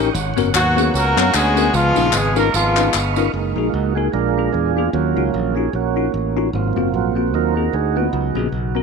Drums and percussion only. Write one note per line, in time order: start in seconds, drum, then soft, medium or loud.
0.15 tambourine medium
0.37 tambourine medium
0.55 clap loud
0.55 tambourine loud
0.78 tambourine medium
0.95 tambourine medium
1.18 clap medium
1.18 tambourine medium
1.34 clap medium
1.34 tambourine medium
1.57 tambourine medium
1.74 tambourine medium
1.96 tambourine medium
2.13 clap medium
2.13 tambourine loud
2.36 tambourine medium
2.54 tambourine medium
2.76 clap medium
2.76 tambourine medium
2.93 clap medium
2.93 tambourine medium
3.16 tambourine medium